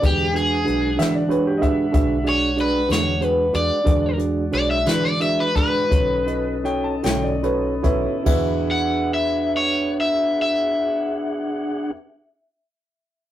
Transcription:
<<
  \new Staff \with { instrumentName = "Upright piano" } { \time 12/8 \key e \mixolydian \tempo 4. = 56 r4. e''16 d''16 b'16 g'16 <dis'' e''>8 e''8 r2 r8 | r1 g''16 a''16 g''16 d''16 b'8 <b e'>8 | <b e'>1. | }
  \new Staff \with { instrumentName = "Overdriven electric guitar" } { \time 12/8 \key e \mixolydian g'8 gis'4 r2 cis''8 b'8 cis''8 b'8 d''8~ | d''8 r8 d''16 e''16 b'16 d''16 e''16 b'16 b'2 r4. | r8 fis''8 e''8 cis''8 e''8 e''2.~ e''8 | }
  \new Staff \with { instrumentName = "Tine electric piano" } { \time 12/8 \key e \mixolydian <d' fis' gis' b'>8 <d' fis' gis' b'>8 <d' fis' gis' b'>8 <d' fis' gis' b'>8 <d' fis' gis' cis''>8 <d' fis' gis' b'>8 <d' fis' gis' b'>8 <d' fis' gis' d''>8 <d' fis' gis' d''>8 <d' fis' gis' b'>8 <d' fis' gis' b'>8 <d' fis' gis' b'>8 | <d' fis' gis' b'>8 <d' fis' gis' d''>8 <d' fis' gis' cis''>8 <d' fis' gis' b'>8 <d' fis' gis' b'>8 <d' fis' gis' d''>8 <dis' fis' a' cis''>8 <dis' fis' a' dis''>8 <dis' fis' a' cis''>8 <dis' fis' a' cis''>8 <dis' fis' a' cis''>8 <dis' fis' a' cis''>8 | <d' fis' gis' b'>1. | }
  \new Staff \with { instrumentName = "Tonewheel organ" } { \time 12/8 \key e \mixolydian <gis d' fis''>1. | <gis fis' d''>2. <cis' a' dis''>2. | <d' gis' fis''>1. | }
  \new Staff \with { instrumentName = "Fingered electric bass" } { \clef bass \time 12/8 \key e \mixolydian e,4 b,,8 e4. b,,4. e,4 e,16 r16 | e,4 b,,8 e4. b,,4. b,,4 b,,16 r16 | e,1. | }
  \new DrumStaff \with { instrumentName = "Drums" } \drummode { \time 12/8 <hh bd>8 hh8 hh8 <hh sn>8 hh8 <hh bd>8 <hh bd>8 hh8 hh8 <hh sn>8 hh8 hh8 | <hh bd>8 hh8 hh8 <hh sn>8 hh8 <hh bd>8 <hh bd>8 hh8 hh8 <hh sn>8 hh8 <hh bd>8 | <cymc bd>4. r4. r4. r4. | }
>>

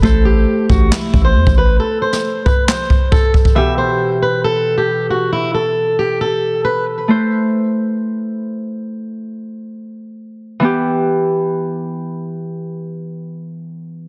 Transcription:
<<
  \new Staff \with { instrumentName = "Steel-string acoustic guitar" } { \time 4/4 \key e \minor \tempo 4 = 136 a'8 g'4 fis'8 e'8. c''8. b'8 | a'8 c''4 b'8 c''4 a'8 r8 | e''8 c''4 b'8 a'8. g'8. fis'8 | e'8 a'4 g'8 a'4 b'8 r8 |
r1 | r1 | r1 | r1 | }
  \new Staff \with { instrumentName = "Harp" } { \time 4/4 \key e \minor <a e' c''>1~ | <a e' c''>1 | <b, e g'>1~ | <b, e g'>1 |
<a e' c''>1~ | <a e' c''>1 | <e b g'>1~ | <e b g'>1 | }
  \new Staff \with { instrumentName = "808-style bass" } { \clef bass \time 4/4 \key e \minor a,,4 r8 a,,8 r8 a,,8 e,16 a,,8. | r1 | r1 | r1 |
r1 | r1 | r1 | r1 | }
  \new DrumStaff \with { instrumentName = "Drums" } \drummode { \time 4/4 bd4 r8 bd8 <hc sn>8 bd8 r16 bd8. | r8. sn16 r8 bd8 <hc sn>8 bd8 bd8 bd16 bd16 | r4 r4 r4 r4 | r4 r4 r4 r4 |
r4 r4 r4 r4 | r4 r4 r4 r4 | r4 r4 r4 r4 | r4 r4 r4 r4 | }
>>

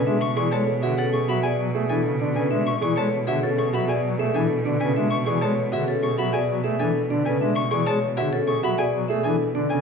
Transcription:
<<
  \new Staff \with { instrumentName = "Violin" } { \time 4/4 \key b \dorian \tempo 4 = 98 r16 cis'''16 cis'''16 a''16 r16 e''16 fis''16 cis'''16 b''16 gis''16 r8 gis''16 r8 gis''16 | r16 cis'''16 cis'''16 a''16 r16 e''16 r16 cis'''16 b''16 gis''16 r8 gis''16 r8 gis''16 | r16 cis'''16 cis'''16 a''16 r16 e''16 r16 cis'''16 b''16 gis''16 r8 gis''16 r8 gis''16 | r16 cis'''16 cis'''16 a''16 r16 e''16 r16 cis'''16 b''16 gis''16 r8 gis''16 r8 gis''16 | }
  \new Staff \with { instrumentName = "Vibraphone" } { \time 4/4 \key b \dorian e''16 r16 d''16 cis''16 r16 gis'16 a'16 r16 e''16 d''16 r16 e''16 a'16 r16 d''16 b'16 | e''16 r16 d''16 cis''16 r16 gis'16 a'16 r16 e''16 d''16 r16 e''16 a'16 r16 d''16 b'16 | e''16 r16 d''16 cis''16 r16 gis'16 a'16 r16 e''16 d''16 r16 e''16 a'16 r16 d''16 b'16 | e''16 r16 d''16 cis''16 r16 gis'16 a'16 r16 e''16 d''16 r16 e''16 a'16 r16 d''16 r16 | }
  \new Staff \with { instrumentName = "Grand piano" } { \time 4/4 \key b \dorian d'16 r16 gis'16 a'16 gis'16 fis'16 cis'16 gis'16 fis'16 gis'16 r16 gis'16 d'16 r16 d'16 a'16 | d'16 r16 gis'16 a'16 r16 fis'16 cis'16 gis'16 fis'16 gis'16 r16 gis'16 d'16 r16 d'16 a'16 | d'16 r16 gis'16 a'16 r16 fis'16 cis'16 gis'16 fis'16 gis'16 r16 gis'16 d'16 r16 d'16 a'16 | d'16 r16 gis'16 r8 fis'16 cis'16 gis'16 fis'16 gis'16 r16 gis'16 d'16 r16 d'16 a'16 | }
  \new Staff \with { instrumentName = "Pipe organ" } { \clef bass \time 4/4 \key b \dorian gis16 r16 e16 gis16 r16 d16 r8 fis16 r16 fis16 a16 e16 cis16 d16 cis16 | gis16 r16 e16 gis16 r16 d16 r8 fis16 r16 fis16 a16 e16 r16 d16 cis16 | gis16 r16 e16 gis16 r16 d16 r8 fis16 r16 fis16 a16 e16 r16 d16 cis16 | gis16 r16 e16 gis16 r16 d16 r8 fis16 r16 fis16 a16 e16 r16 d16 cis16 | }
  \new Staff \with { instrumentName = "Cello" } { \clef bass \time 4/4 \key b \dorian b,1~ | b,1~ | b,1~ | b,1 | }
>>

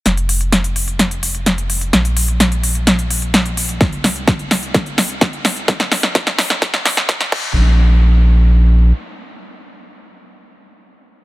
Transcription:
<<
  \new Staff \with { instrumentName = "Sub bass" } { \clef bass \time 4/4 \key f \mixolydian \tempo 4 = 128 f,,1 | bes,,1 | c,1 | bes,,2.~ bes,,8 bes,,8~ |
bes,,2. r4 | r1 | }
  \new DrumStaff \with { instrumentName = "Drums" } \drummode { \time 4/4 <hh sn>16 hh16 hho16 hh16 <hh sn>16 hh16 hho16 hh16 <hh sn>16 hh16 hho16 hh16 <hh sn>16 hh16 hho16 hh16 | <hh sn>16 hh16 hho16 hh16 <hh sn>16 hh16 hho16 hh16 <hh sn>16 hh16 hho16 hh16 <hh sn>16 hh16 hho16 hh16 | <hh bd sn>16 hh16 <hho sn>16 hh16 <hh bd sn>16 hh16 <hho sn>16 hh16 <hh bd sn>16 hh16 <hho sn>16 hh16 <hh bd sn>16 hh16 <hho sn>16 hh16 | <hh bd sn>16 <hh sn>16 <hho sn>16 sn16 <hh bd sn>16 <hh sn>16 <hho sn>16 <hh sn>16 <hh bd sn>16 <hh sn>16 <hho sn>16 <hh sn>16 <hh bd sn>16 <hh sn>16 <cymc bd>8 |
r4 r4 r4 r4 | r4 r4 r4 r4 | }
>>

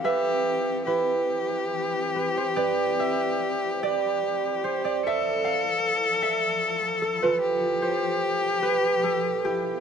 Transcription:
<<
  \new Staff \with { instrumentName = "Harp" } { \time 3/4 \key c \major \tempo 4 = 73 << { e''4 b'4. b'16 c''16 | d''8 e''4 d''4 c''16 d''16 | e''8 f''4 e''4 a'16 b'16~ | b'8 c''4 b'8 a'8 g'8 | } \\ { b'4 e'4. r8 | b'4. r4. | a'4. r4 r16 f'16~ | f'4~ f'16 r4 r16 e'8 | } >> }
  \new Staff \with { instrumentName = "Cello" } { \time 3/4 \key c \major g'4 g'2~ | g'2. | a'2. | g'2. | }
  \new Staff \with { instrumentName = "Ambient pad" } { \clef bass \time 3/4 \key c \major << { <c' b'>2.~ | <c' b'>2. | <e a'>2. | <b, g'>2. | } \\ { e2.~ | e2. | f2.~ | f2. | } >> }
>>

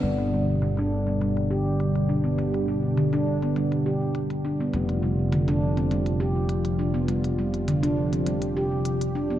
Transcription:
<<
  \new Staff \with { instrumentName = "Singing bowl" } { \time 4/4 \tempo 4 = 102 d''1~ | d''1~ | d''1~ | d''1 | }
  \new Staff \with { instrumentName = "Handpan" } { \time 4/4 g16 r16 g16 r16 d16 d'8 b16 g16 r16 g'16 r8. d'16 b16 | g16 r16 g16 r16 d16 d'8 b16 g16 r16 g'16 r8. d'16 b16 | g16 r16 g16 r16 d16 d'8 c'16 g16 r16 g'16 r8. d'16 b16 | g16 r16 g16 r16 d16 d'8 c'16 g16 r16 g'16 r8. d'16 b16 | }
  \new Staff \with { instrumentName = "Analog synth pad" } { \clef bass \time 4/4 << { <g g'>1~ | <g g'>1 | r1 | g'1 | } \\ { <b, d d'>1~ | <b, d d'>1 | <c f f'>1~ | <c f f'>1 | } >> }
  \new Staff \with { instrumentName = "Fretless electric bass" } { \clef bass \time 4/4 g,,1~ | g,,1 | f,,1~ | f,,1 | }
  \new DrumStaff \with { instrumentName = "Drums" } \drummode { \time 4/4 <cymc hh>16 hh8. hh16 hh8 hh16 hh16 hh8. hh16 hh8. | hh16 hh8. hh16 hh8 hh16 hh16 hh8. hh16 hh8. | hh16 hh8. hh16 hh8 hh16 hh16 hh8. hh16 hh8. | hh16 hh8 hh16 hh16 hh8 hh16 hh16 hh8. hh16 hh8. | }
>>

